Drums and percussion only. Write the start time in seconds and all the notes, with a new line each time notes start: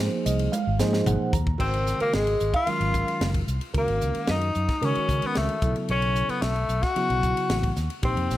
0.26 hi-hat pedal, ride
0.39 ride
0.53 hi-hat pedal, high tom
0.79 snare, hi-hat pedal
0.93 snare
1.06 hi-hat pedal, mid tom
1.33 kick, hi-hat pedal
1.47 kick
1.60 kick, crash
1.74 ride
1.87 snare, hi-hat pedal
2.00 ride
2.13 snare, ride
2.27 ride
2.40 hi-hat pedal
2.54 kick, ride
2.67 ride
2.81 ride
2.94 kick, hi-hat pedal
3.08 ride
3.21 snare, ride
3.34 kick, ride
3.48 hi-hat pedal
3.61 ride
3.74 kick, ride
3.88 ride
4.01 hi-hat pedal
4.15 ride
4.27 snare, ride
4.41 ride
4.55 hi-hat pedal
4.69 kick, snare, ride
4.82 ride
4.95 ride
5.09 kick, hi-hat pedal
5.22 ride
5.35 snare, ride
5.49 ride
5.62 kick, hi-hat pedal
5.76 ride
5.89 ride
6.02 ride
6.15 hi-hat pedal
6.29 ride
6.42 snare, ride
6.56 ride
6.69 hi-hat pedal
6.83 kick, snare, ride
6.96 ride
7.10 ride
7.23 kick, hi-hat pedal
7.37 ride
7.50 snare, ride
7.63 kick, ride
7.76 snare, hi-hat pedal
7.90 ride
8.03 kick, ride
8.17 ride
8.31 snare, hi-hat pedal